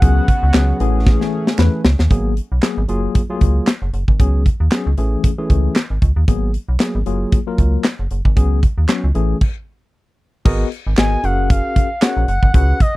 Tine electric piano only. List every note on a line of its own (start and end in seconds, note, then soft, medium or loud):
0.02 0.24 F#3 medium
0.02 0.25 B3 medium
0.02 0.25 C#4 medium
0.02 0.25 G#4 medium
0.54 0.76 F#3 medium
0.54 0.77 B3 medium
0.54 0.77 C#4 medium
0.54 0.77 G#4 medium
0.80 1.44 E3 medium
0.80 1.44 A3 medium
0.80 1.44 C#4 medium
0.80 1.45 G#4 loud
1.58 1.81 E3 medium
1.58 1.81 A3 medium
1.58 1.81 C#4 medium
1.58 1.81 B4 medium
2.11 2.33 F#3 medium
2.11 2.33 A#3 medium
2.11 2.33 B3 medium
2.11 2.33 G#4 medium
2.63 2.80 F#3 medium
2.63 2.80 A#3 medium
2.63 2.81 B3 medium
2.63 2.81 G#4 medium
2.88 3.21 F#3 medium
2.88 3.21 A#3 medium
2.88 3.21 F4 medium
2.88 3.21 G#4 loud
3.30 3.66 F#3 medium
3.30 3.35 A3 medium
3.30 3.67 F4 medium
3.30 3.67 G#4 loud
3.36 3.70 A#3 medium
4.20 4.42 F#3 medium
4.20 4.42 B3 medium
4.20 4.42 C#4 medium
4.20 4.42 G#4 loud
4.71 4.89 F#3 medium
4.71 4.89 B3 medium
4.71 4.89 C#4 medium
4.71 4.89 G#4 medium
4.97 5.30 E3 medium
4.97 5.30 A3 medium
4.97 5.30 C#4 medium
4.97 5.30 G#4 medium
5.38 5.75 E3 medium
5.38 5.75 A3 medium
5.38 5.75 C#4 medium
5.38 5.75 G#4 medium
6.28 6.50 F#3 medium
6.28 6.50 A#3 medium
6.28 6.51 B3 medium
6.28 6.51 G#4 medium
6.80 6.98 F#3 medium
6.80 6.98 A#3 medium
6.80 6.98 B3 medium
6.80 6.98 G#4 medium
7.06 7.38 F#3 medium
7.06 7.38 A#3 medium
7.06 7.39 F4 medium
7.06 7.39 G#4 medium
7.47 7.84 F#3 medium
7.47 7.84 A#3 medium
7.47 7.84 F4 medium
7.47 7.84 A#4 medium
8.36 8.59 F#3 medium
8.36 8.59 B3 medium
8.36 8.59 C#4 medium
8.36 8.59 G#4 loud
8.88 9.06 F#3 medium
8.88 9.06 B3 medium
8.88 9.07 C#4 medium
8.88 9.07 F#4 medium
9.14 9.36 E3 medium
9.14 9.37 A3 medium
9.14 9.37 C#4 medium
9.14 9.37 G#4 medium
10.45 10.68 B3 loud
10.45 10.68 F#4 loud
10.45 10.68 G#4 medium
10.45 10.68 A#4 medium
10.45 10.68 D#5 loud
10.97 11.20 B3 medium
10.97 11.20 F#4 medium
10.97 11.20 G#4 medium
10.97 11.20 A#4 medium
10.97 11.20 D#5 medium
11.23 11.87 C#4 medium
11.23 11.88 F#4 medium
11.23 11.88 G#4 medium
11.23 11.88 A#4 medium
11.23 11.88 F5 medium
12.02 12.24 C#4 medium
12.02 12.24 F#4 medium
12.02 12.24 G#4 medium
12.02 12.25 A#4 medium
12.02 12.25 C#5 medium
12.54 12.76 C#4 medium
12.54 12.76 F#4 medium
12.54 12.76 G#4 medium
12.54 12.77 B4 medium
12.54 12.77 F#5 medium